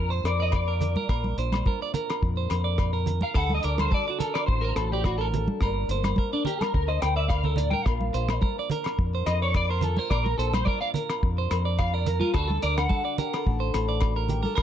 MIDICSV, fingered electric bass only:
0, 0, Header, 1, 2, 480
1, 0, Start_track
1, 0, Key_signature, -2, "major"
1, 0, Tempo, 564972
1, 929, Time_signature, 4, 2, 24, 8
1, 5248, Tempo, 560224
1, 12485, End_track
2, 0, Start_track
2, 0, Title_t, "Fingered electric bass"
2, 0, Program_c, 0, 33
2, 0, Note_on_c, 0, 41, 95
2, 170, Note_off_c, 0, 41, 0
2, 202, Note_on_c, 0, 41, 93
2, 809, Note_off_c, 0, 41, 0
2, 927, Note_on_c, 0, 34, 97
2, 1129, Note_off_c, 0, 34, 0
2, 1169, Note_on_c, 0, 34, 93
2, 1371, Note_off_c, 0, 34, 0
2, 1891, Note_on_c, 0, 41, 97
2, 2092, Note_off_c, 0, 41, 0
2, 2131, Note_on_c, 0, 41, 97
2, 2734, Note_off_c, 0, 41, 0
2, 2850, Note_on_c, 0, 38, 102
2, 3052, Note_off_c, 0, 38, 0
2, 3095, Note_on_c, 0, 38, 96
2, 3294, Note_off_c, 0, 38, 0
2, 3810, Note_on_c, 0, 33, 96
2, 4011, Note_off_c, 0, 33, 0
2, 4046, Note_on_c, 0, 33, 101
2, 4649, Note_off_c, 0, 33, 0
2, 4771, Note_on_c, 0, 31, 96
2, 4970, Note_off_c, 0, 31, 0
2, 4999, Note_on_c, 0, 31, 92
2, 5202, Note_off_c, 0, 31, 0
2, 5738, Note_on_c, 0, 38, 98
2, 5935, Note_off_c, 0, 38, 0
2, 5974, Note_on_c, 0, 38, 91
2, 6576, Note_off_c, 0, 38, 0
2, 6689, Note_on_c, 0, 34, 100
2, 6891, Note_off_c, 0, 34, 0
2, 6934, Note_on_c, 0, 34, 94
2, 7134, Note_off_c, 0, 34, 0
2, 7654, Note_on_c, 0, 41, 93
2, 7854, Note_off_c, 0, 41, 0
2, 7896, Note_on_c, 0, 41, 99
2, 8497, Note_off_c, 0, 41, 0
2, 8618, Note_on_c, 0, 34, 110
2, 8817, Note_off_c, 0, 34, 0
2, 8854, Note_on_c, 0, 34, 97
2, 9054, Note_off_c, 0, 34, 0
2, 9579, Note_on_c, 0, 41, 93
2, 9777, Note_off_c, 0, 41, 0
2, 9820, Note_on_c, 0, 41, 109
2, 10418, Note_off_c, 0, 41, 0
2, 10533, Note_on_c, 0, 38, 100
2, 10732, Note_off_c, 0, 38, 0
2, 10779, Note_on_c, 0, 38, 95
2, 10976, Note_off_c, 0, 38, 0
2, 11495, Note_on_c, 0, 33, 100
2, 11692, Note_off_c, 0, 33, 0
2, 11731, Note_on_c, 0, 33, 104
2, 12331, Note_off_c, 0, 33, 0
2, 12450, Note_on_c, 0, 31, 113
2, 12485, Note_off_c, 0, 31, 0
2, 12485, End_track
0, 0, End_of_file